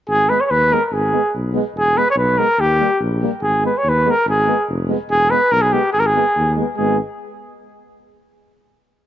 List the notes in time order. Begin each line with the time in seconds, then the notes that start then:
0.08 G#1 G#4
0.29 G#3 B3 B4
0.41 C#5
0.46 C#5
0.50 D#2 B4
0.71 G#3 B3 A#4
0.86 A#4
0.92 G#1 G#4
1.12 G#3 B3
1.35 B1
1.53 G#3 B3
1.74 E1 G#4
1.97 G#3 B3 B4
2.10 C#5
2.16 B1 B4
2.37 G#3 B3 A#4
2.58 D#2 G4
2.80 G3 A#3
3.00 A#1
3.23 G3 A#3
3.41 G#1 G#4
3.63 G#3 B3 B4
3.78 C#5
3.84 D#2
3.89 B4
4.05 G#3 B3
4.10 A#4
4.25 G#1 G#4
4.47 G#3 B3
4.69 F1
4.89 G#3 B3
5.09 E1 G#4
5.30 G#3 B3 B4
5.51 B1 A#4
5.61 G#4
5.72 G#3 B3 G4
5.93 G#1 G#4
6.00 A#4
6.06 G#4
6.16 G#3 B3
6.37 D#2
6.56 G#3 B3
6.76 G#1 G#3 B3 G#4